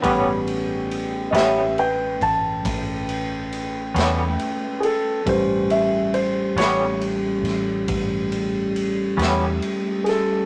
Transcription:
<<
  \new Staff \with { instrumentName = "Grand piano" } { \time 12/8 \key a \mixolydian \tempo 4. = 46 << { fis4 r8 <g' dis'' e''>8 <b' g''>8 a''2 r4 <gis' a'>8 | c''8 e''8 c''8 cis''8 r2. r8 <gis' a'>8 | } \\ { <g b cis'>4. r1 r8 | <g cis' b'>1. | } >> }
  \new Staff \with { instrumentName = "Tonewheel organ" } { \time 12/8 \key a \mixolydian <a cis' b' g''>1. | <g a cis' g'>1. | }
  \new Staff \with { instrumentName = "Clean electric guitar" } { \time 12/8 \key a \mixolydian <a, g b cis'>8 r4 <a, g b cis'>8 r2 r8 <a, g b cis'>8 r4 | r4. <a, g b cis'>8 r2 r8 <a, g b cis'>8 r4 | }
  \new Staff \with { instrumentName = "Fingered electric bass" } { \clef bass \time 12/8 \key a \mixolydian a,,4. a,,4 a,,8 a,,4. e,8 r4 | a,,4. a,,4 a,,8 a,,4. e,8 r4 | }
  \new DrumStaff \with { instrumentName = "Drums" } \drummode { \time 12/8 <bd cymr>8 cymr8 cymr8 <cymr sn>8 cymr8 <bd cymr>8 <bd cymr>8 cymr8 cymr8 <cymr sn>8 cymr8 cymr8 | <bd cymr>8 cymr8 cymr8 <cymr sn>8 cymr8 <cymr sn>8 <bd cymr>8 cymr8 cymr8 <cymr sn>8 cymr8 <cymr sn>8 | }
>>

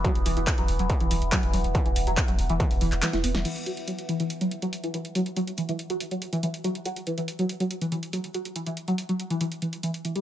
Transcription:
<<
  \new Staff \with { instrumentName = "Synth drone" } { \clef bass \time 4/4 \key c \lydian \tempo 4 = 141 <e b>1~ | <e b>1 | r1 | r1 |
r1 | r1 | }
  \new Staff \with { instrumentName = "Analog synth lead" } { \clef bass \time 4/4 \key c \lydian fis16 r16 e16 e16 r16 fis16 r16 fis16 r16 e16 e16 r16 fis16 r16 fis16 r16 | e16 e16 r16 fis16 r16 fis16 r16 e16 e16 r16 e16 r16 e16 e'16 b16 e16 | e16 r16 fis16 r16 fis16 r16 e16 e16 r16 fis16 r16 fis16 r16 e16 e16 r16 | fis16 r16 fis16 r16 e16 e16 r16 fis16 r16 fis16 r16 e16 e16 r16 fis16 r16 |
fis16 r16 e16 e16 r16 fis16 r16 fis16 r16 e16 e16 r16 fis16 r16 fis16 r16 | e16 e16 r16 fis16 r16 fis16 r16 e16 e16 r16 e16 r16 e16 r16 e16 g16 | }
  \new Staff \with { instrumentName = "Sub bass" } { \clef bass \time 4/4 \key c \lydian r16 e,,16 e,,16 e,,16 r16 e,,16 e,,16 e,,16 r16 e,,16 e,,16 e,,16 r16 e,,16 e,,16 e,,16 | r16 e,,16 e,,16 e,,16 r16 e,,16 e,,16 e,,16 r16 e,,16 e,,16 e,,16 r16 e,,16 e,,16 e,,16 | r1 | r1 |
r1 | r1 | }
  \new DrumStaff \with { instrumentName = "Drums" } \drummode { \time 4/4 <hh bd>16 hh16 hho16 hh16 <hc hh bd>16 hh16 hho16 hh16 <hh bd>16 hh16 hho16 hh16 <hc hh bd>16 hh16 hho16 hh16 | <hh bd>16 hh16 hho16 hh16 <hc hh bd>16 hh16 hho16 hh16 <hh bd>16 hho16 hho16 <hc hh>16 <hc hh sn>16 <hh sn>16 hho16 <hh sn>16 | <cymc hh>16 hh16 hh16 hh16 hh16 hh16 hh16 hh16 hh16 hh16 hh16 hh16 hh16 hh16 hh16 hh16 | hh16 hh16 hh16 hh16 hh16 hh16 hh16 hh16 hh16 hh16 hh16 hh16 hh16 hh16 hh16 hh16 |
hh16 hh16 hh16 hh16 hh16 hh16 hh16 hh16 hh16 hh16 hh16 hh16 hh16 hh16 hh16 hh16 | hh16 hh16 hh16 hh16 hh16 hh16 hh16 hh16 hh16 hh16 hh16 hh16 hh16 hh16 hh16 hh16 | }
>>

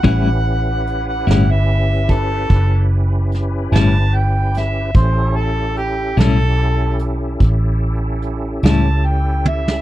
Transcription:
<<
  \new Staff \with { instrumentName = "Harmonica" } { \time 12/8 \key a \mixolydian \tempo 4. = 49 fis''4~ fis''16 fis''8 e''8. a'4 r4 a''8 g''8 e''8 | c''8 a'8 g'8 a'4 r2 a''8 g''8 e''8 | }
  \new Staff \with { instrumentName = "Tonewheel organ" } { \time 12/8 \key a \mixolydian <cis' e' g' b'>1. | <cis' e' g' a'>1. | }
  \new Staff \with { instrumentName = "Clean electric guitar" } { \time 12/8 \key a \mixolydian <a, g cis' e'>8 r4 <a, g cis' e'>8 r2 r8 <a, g cis' e'>8 r4 | r4. <a, g cis' e'>8 r2 r8 <a, g cis' e'>8 r4 | }
  \new Staff \with { instrumentName = "Fingered electric bass" } { \clef bass \time 12/8 \key a \mixolydian a,,4. g,,4. fis,,4. g,,4. | a,,4. b,,4. a,,4. cis,4. | }
  \new DrumStaff \with { instrumentName = "Drums" } \drummode { \time 12/8 <hh bd>4 hh8 <hh sn>4 <hh bd>8 <hh bd>4 <hh sn>8 <hh sn>4 <hh sn>8 | <hh bd>4 hh8 <hh sn>4 hh8 <hh bd>4 hh8 <hh sn>4 tommh16 sn16 | }
>>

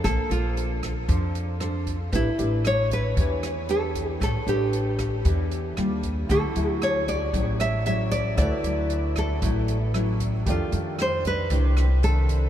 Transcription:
<<
  \new Staff \with { instrumentName = "Nylon-string guitar" } { \time 4/4 \key d \major \tempo 4 = 115 a'8 f'2. r8 | e'4 cis''8 b'4. a'4 | a'8 g'2. r8 | a'4 cis''8 d''4 e''8 e''8 d''8 |
d''4. a'2 r8 | f'4 c''8 b'4. a'4 | }
  \new Staff \with { instrumentName = "Grand piano" } { \time 4/4 \key d \major r1 | r1 | r1 | <e' fis' a' cis'''>1 |
<e' fis' a' b'>1 | <g' a' d''>1 | }
  \new Staff \with { instrumentName = "Nylon-string guitar" } { \time 4/4 \key d \major << { <d' a' c''>8 <d' a' c''>4. <d' a' c''>4 <d' a' c''>8 r8 | <d' g' b'>8 <d' g' b'>4. <d' g' b'>8 r8 <d' g' b'>4~ | <d' g' b'>8 <d' g' b'>4. <d' g' b'>4 <g d' f'>4 | <fis cis' e'>8 <fis cis' e'>4. <fis cis' e'>8 r8 <fis cis' e'>4 |
r8 <fis e'>4. <fis cis' e'>8 r8 <fis cis' e'>4 | <ees a d'>8 <ees a d'>4. <ees a d'>8 r8 <ees a d'>4 | } \\ { bes2 f2 | a2 e2 | a2 e4 r4 | d2 a,2 |
d2 a,2 | f,2 c2 | } >> }
  \new Staff \with { instrumentName = "Upright bass" } { \clef bass \time 4/4 \key d \major bes,,16 r16 bes,,4. f,2 | a,,16 r16 a,,4. e,2 | a,,16 r16 a,,4. e,4 ees,4 | d,16 r16 d,4. a,,2 |
d,16 r16 d,4. a,,2 | f,16 r16 f,4. c,2 | }
  \new DrumStaff \with { instrumentName = "Drums" } \drummode { \time 4/4 <hh bd ss>8 hh8 hh8 <hh bd ss>8 <hh bd>8 hh8 <hh ss>8 <hh bd>8 | <hh bd>8 hh8 <hh ss>8 <hh bd>8 <hh bd>8 <hh ss>8 hh8 <hh bd>8 | <hh bd ss>8 hh8 hh8 <hh bd ss>8 <hh bd>8 hh8 <hh ss>8 <hh bd>8 | <hh bd>8 hh8 <hh ss>8 <hh bd>8 <hh bd>8 <hh ss>8 hh8 <hh bd>8 |
<hh bd ss>8 hh8 hh8 <hh bd ss>8 <hh bd>8 hh8 <hh ss>8 <hh bd>8 | <hh bd>8 hh8 <hh ss>8 <hh bd>8 <hh bd>8 <hh ss>8 hh8 <hh bd>8 | }
>>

